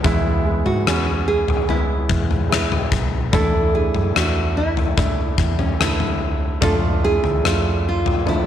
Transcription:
0.03 0.62 E2 medium
0.03 1.24 E3 medium
0.03 0.43 G#3 medium
0.03 0.43 B3 medium
0.03 0.68 E4 medium
0.03 0.44 E4 medium
0.03 kick medium
0.03 floor tom medium
0.45 0.84 G#3 medium
0.45 0.85 B3 soft
0.45 0.85 E4 medium
0.66 0.85 G#2 medium
0.66 1.23 F#4 medium
0.66 floor tom soft
0.87 2.06 E2 medium
0.87 1.65 G#3 medium
0.87 1.65 B3 medium
0.87 1.65 C#4 medium
0.87 cross-stick medium
1.28 1.70 G#4 medium
1.48 floor tom medium
1.67 2.46 G#3 medium
1.67 2.47 B3 medium
1.67 2.47 E4 medium
1.67 2.89 E4 medium
1.67 floor tom medium
2.09 2.88 E2 medium
2.09 kick medium
2.31 floor tom soft
2.49 3.28 G#3 medium
2.49 3.28 B3 soft
2.49 3.29 E4 medium
2.49 cross-stick medium
2.72 floor tom medium
2.92 3.30 B1 medium
2.92 kick medium
3.32 3.91 E2 medium
3.32 4.52 E3 medium
3.32 3.71 A3 medium
3.32 3.72 D4 medium
3.32 3.72 E4 medium
3.32 3.74 A4 medium
3.32 kick medium
3.32 floor tom medium
3.73 4.12 A3 medium
3.73 4.13 D4 soft
3.73 4.13 E4 medium
3.73 4.16 G#4 medium
3.94 4.14 F#2 medium
3.94 floor tom medium
4.14 5.35 E2 medium
4.14 4.93 A3 medium
4.14 4.93 D4 medium
4.14 4.94 E4 medium
4.14 4.58 F#4 medium
4.14 cross-stick medium
4.57 5.59 E4 medium
4.77 floor tom medium
4.97 5.75 A3 medium
4.97 5.76 D4 medium
4.97 5.76 E4 medium
4.97 kick medium
4.97 floor tom medium
5.38 6.58 E2 medium
5.38 kick medium
5.59 6.17 C#4 medium
5.59 floor tom soft
5.79 6.58 D3 soft
5.79 6.57 A3 medium
5.79 6.58 E4 medium
5.79 cross-stick medium
6.00 floor tom medium
6.61 7.20 F2 medium
6.61 7.00 A3 medium
6.61 7.01 D4 medium
6.61 7.01 F4 medium
6.61 6.74 A4 medium
6.61 kick medium
6.61 floor tom medium
7.02 7.42 A3 medium
7.02 7.42 D4 medium
7.02 7.42 E4 medium
7.02 7.88 G#4 medium
7.23 7.43 D2 medium
7.23 floor tom medium
7.43 8.46 F2 medium
7.43 8.22 A3 medium
7.43 8.22 D4 medium
7.43 8.23 F4 medium
7.43 cross-stick medium
7.89 8.25 F4 medium
8.06 floor tom medium
8.25 8.46 F3 medium
8.25 8.46 A3 medium
8.25 8.46 D4 medium
8.25 8.46 E4 medium
8.25 floor tom medium

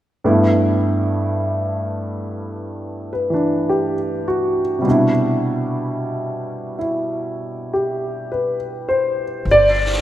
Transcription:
0.24 4.85 G2 soft
0.24 4.80 G3 soft
0.24 4.85 A3 soft
0.24 4.86 B3 soft
0.24 4.86 E4 soft
3.13 3.95 B4 soft
3.30 4.84 E3 soft
3.30 4.86 D4 soft
3.69 4.61 G4 soft
4.28 5.10 F#4 soft
4.79 9.43 C3 soft
4.79 9.44 G3 soft
4.85 9.46 B2 soft
4.85 9.47 D4 soft
4.90 6.77 E4 soft
6.79 9.47 E4 soft
7.73 8.56 G4 soft
8.32 9.23 B4 soft
8.89 9.71 C5 soft
9.45 10.01 G1 medium
9.45 brush sweep soft
9.51 10.01 D5 medium

